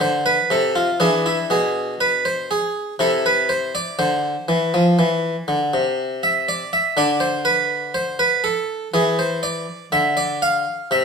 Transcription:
Already playing: E4
0.00 D3 C5
0.26 B4
0.50 C3 A4
0.76 F4
1.00 E3 D4 G#4
1.26 E4
1.50 B2 G#4
2.01 B4
2.25 C5
2.51 G#4
2.99 C3 E4 A4
3.26 B4
3.49 C5
3.75 D5
3.99 D3 C5
4.48 E3
4.74 F3
4.99 E3
5.48 D3
5.74 C3
6.23 E5
6.48 D5
6.73 E5
6.97 D3 D4 D5
7.20 C5
7.45 B4
7.94 C5
8.19 B4
8.44 A4
8.94 E3 G#4
9.19 C5
9.43 D5
9.92 D3 E5
10.17 D5
10.42 F5
10.91 C3 E5

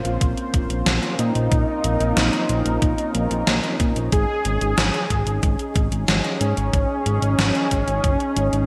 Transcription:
Already playing: A#3 C4 C#4 F4 C5
0.05 A#1, closed hi-hat
0.21 A#1, kick, closed hi-hat
0.37 closed hi-hat
0.54 A#1, kick, closed hi-hat
0.70 A#1, closed hi-hat
0.86 A#1, snare, closed hi-hat
1.03 closed hi-hat
1.19 A#2 D#4, closed hi-hat
1.35 A#1, closed hi-hat
1.52 A#1 A#4, kick, closed hi-hat
1.84 A#1, closed hi-hat
2.00 A#1, closed hi-hat
2.17 A#1, snare, closed hi-hat
2.33 closed hi-hat
2.49 A#1, closed hi-hat
2.66 A#1, closed hi-hat
2.82 A#1, kick, closed hi-hat
2.98 closed hi-hat
3.15 A#1, closed hi-hat
3.31 A#1, closed hi-hat
3.47 A#1, snare, closed hi-hat
3.63 closed hi-hat
3.80 A#2, kick, closed hi-hat
3.96 A#1, closed hi-hat
4.12 G#1 D#4 G#4, kick, closed hi-hat
4.45 G#1, closed hi-hat
4.61 G#1, closed hi-hat
4.78 G#1, snare, closed hi-hat
4.94 closed hi-hat
5.10 G#1, kick, closed hi-hat
5.27 G#1, closed hi-hat
5.43 G#1, kick, closed hi-hat
5.59 closed hi-hat
5.76 G#1, kick, closed hi-hat
5.92 G#1, closed hi-hat
6.08 G#1, snare, closed hi-hat
6.25 closed hi-hat
6.41 G#2 C#4, closed hi-hat
6.57 G#1, closed hi-hat
6.73 G#1, kick, closed hi-hat
7.06 G#1, closed hi-hat
7.22 G#1, closed hi-hat
7.39 G#1, snare, closed hi-hat
7.55 closed hi-hat
7.71 G#1, kick, closed hi-hat
7.88 G#1, closed hi-hat
8.04 F#1, kick, closed hi-hat
8.20 closed hi-hat
8.36 G#1, closed hi-hat
8.53 G#1, closed hi-hat

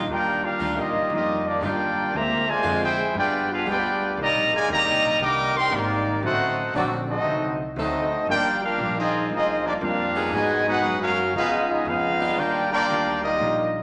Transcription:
0.07 D#2 D#3 G3 A#3 D4 F4 G4 A#4 D5
0.12 F4 G5
0.42 A#3 D4 F4 G4 A#4 F5, muted upright bass stroke
0.59 D2 D#3 G3 D4 F4
0.76 A#1 G3 A#3 D#4 F4 G4 D#5
0.93 G1
1.10 F2 D#3 G3 A#3 D4 D#4 F4
1.14 A#3 G4 D#5
1.46 G3 A#3 D4 F4 G4 D5
1.61 G2 D#3 G3 A#3 D4 F4 G4 A#4 D5 G5
2.12 D2 D3 G#3 A#3 C4 F4 G4 C5 E5 A#5
2.48 C3 F3 G#3 F4 C5 D5 G#5
2.63 F2 D3 G#3 C4 F4
2.83 E4 G#4 C5 G5
3.14 G2 G3 B3 D4 F4 G4 G#4
3.18 B4 D5 G5
3.51 B3 D4 F4 G#4 B4 F5
3.66 D2 F3 G3 G#3 B3 D4 F4 G4 G#4 B4 D5 G5
4.17 C2 C3 D#3 G3 A#3 D4 G4 D5 D#5 A#5
4.35 A#1
4.51 G1 G#3 F4 A#4 D5 G#5
4.68 D#2 C3 D#3 G3 A#3 D4 G4 D5 D#5 A#5
4.86 C2
5.03 A#1
5.19 C2 C3 D3 D#3 G3 A#3 D4 A#4 D#5 G5 D6
5.55 D#3 G3 C4 A#4 D#5 G5 C6
5.71 G#1 C3 D#3 G3 A#3 C4 D4 D#4 G4 A#4 D5
6.23 A1 D3 F#3 A3 C4 D#4 F#4 A4 C5 F#5
6.73 A#1 D3 D#3 F#3 A3 C4 D4 D#4 F#4 A4 D5
7.08 A3 C4 D#4 F#4 A4 D#5
7.25 C2 D3 F#3 C4 D#4
7.76 D2 D3 D#3 F#3 A3 C4 D4 D#4 F#4 A4 D#5
8.27 G1 G2 F3 A#3 D4 F4 G4 A#4 D5 G5
8.63 A#3 D4 F4 G4 A#4 F5
8.78 A#1 G2 F3 A#3 D4
8.97 C4 D#4 F4 G#4 D#5
9.29 D2 G2 F3 A#3 D4 D#4
9.34 C4 F4 G#4 D#5
9.65 F3 A#3 D4 F4 G4 D5
9.81 F2 G2 F3 A#3 D4 F4 G4 A#4 F5
10.15 F#3 B3 D#4 G#4
10.31 G#2 B2 D#3 F#3 G#3 B3 D#4 F#4 B4 D#5 G#5
10.67 B3 D#4 F#4 G#4 B4 F#5
10.82 F#2 G#2 F#3 B3 D#4
11.01 C#4 F#4 A#4 F5
11.33 C#2 C#3 F3 G#3 B3 D#4 F4 G#4 B4 F5
11.69 G#3 B3 D#4 F4 G#4 D#5
11.85 F2 C#3 F3 G#3 B3 D#4 F4 G#4 B4 F5
12.20 D#3 G3 D4 F4
12.36 D#2 D#3 G3 A#3 D4 F4 G4 A#4 D5 G5
12.72 A#3 D4 F4 G4 A#4 D5 G5
12.88 D2 D#3 G3 D4 F4
13.23 G3 A#3 D#4 F4 G4 D#5
13.39 A#1 D#3 G3 D4 F4

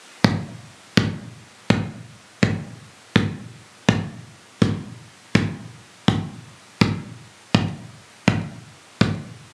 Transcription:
0.24 kick
0.97 kick
1.70 kick
2.43 kick
3.16 kick
3.89 kick
4.62 kick
5.35 kick
6.08 kick
6.81 kick
7.55 kick
8.28 kick
9.01 kick

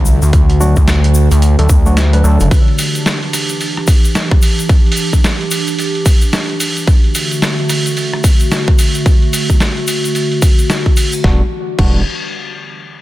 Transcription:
Already playing: C2 D3 A3 F#4
0.05 shaker
0.22 D2, shaker
0.33 D2, kick, closed hi-hat, shaker
0.50 closed hi-hat
0.60 F#3 A3 D4 F#4, shaker
0.76 D2, kick, shaker
0.88 snare, closed hi-hat, shaker
1.04 closed hi-hat
1.14 shaker
1.31 D2, closed hi-hat, shaker
1.42 closed hi-hat, shaker
1.59 D2 F#3 A3 D4 A4, closed hi-hat
1.69 D2, kick, shaker
1.86 F#3 A3 D4 F#4, shaker
1.97 snare, closed hi-hat, shaker
2.13 F#3 A3 D4 B4, closed hi-hat
2.24 D2 F#3 A3 D4 A4, shaker
2.40 F#1, closed hi-hat, shaker
2.51 E3 D4 G4, kick, open hi-hat, shaker
2.68 open hi-hat
2.78 open hi-hat, shaker
2.95 open hi-hat, shaker
3.06 snare, open hi-hat, shaker
3.23 open hi-hat
3.33 cross-stick, open hi-hat, shaker
3.49 open hi-hat, shaker
3.60 open hi-hat, shaker
3.77 cross-stick, open hi-hat
3.87 kick, open hi-hat, shaker
4.05 open hi-hat, shaker
4.15 snare, open hi-hat, shaker
4.31 kick, cross-stick, open hi-hat
4.42 open hi-hat, shaker
4.59 open hi-hat, shaker
4.69 kick, open hi-hat, shaker
4.86 open hi-hat
4.92 open hi-hat
4.97 shaker
5.13 kick, open hi-hat, shaker
5.24 snare, open hi-hat, shaker
5.41 open hi-hat
5.51 open hi-hat, shaker
5.67 open hi-hat, shaker
5.79 open hi-hat, shaker
5.95 open hi-hat
6.06 kick, open hi-hat, shaker
6.22 open hi-hat, shaker
6.33 snare, open hi-hat, shaker
6.50 open hi-hat
6.60 open hi-hat, shaker
6.77 open hi-hat, shaker
6.87 D3 A3 F#4, kick, open hi-hat, shaker
7.04 open hi-hat
7.15 open hi-hat, shaker
7.31 open hi-hat, shaker
7.42 snare, open hi-hat, shaker
7.59 open hi-hat
7.69 cross-stick, open hi-hat, shaker
7.86 open hi-hat, shaker
7.97 open hi-hat, shaker
8.13 cross-stick, open hi-hat
8.24 kick, open hi-hat, shaker
8.40 open hi-hat, shaker
8.51 snare, open hi-hat, shaker
8.68 kick, cross-stick, open hi-hat
8.78 open hi-hat, shaker
8.95 open hi-hat, shaker
9.06 kick, open hi-hat, shaker
9.22 open hi-hat
9.33 open hi-hat, shaker
9.50 kick, open hi-hat, shaker
9.60 snare, open hi-hat, shaker
9.77 open hi-hat
9.87 open hi-hat, shaker
10.04 open hi-hat, shaker
10.15 open hi-hat, shaker
10.32 open hi-hat
10.42 kick, open hi-hat, shaker
10.59 open hi-hat, shaker
10.70 snare, open hi-hat, shaker
10.86 kick, open hi-hat
10.96 open hi-hat, shaker
11.12 open hi-hat, shaker
11.24 E1 E3 G3 B3 D4 F#4 G4, kick, snare
11.79 E1 G3 B3 D4 F#4, kick, crash

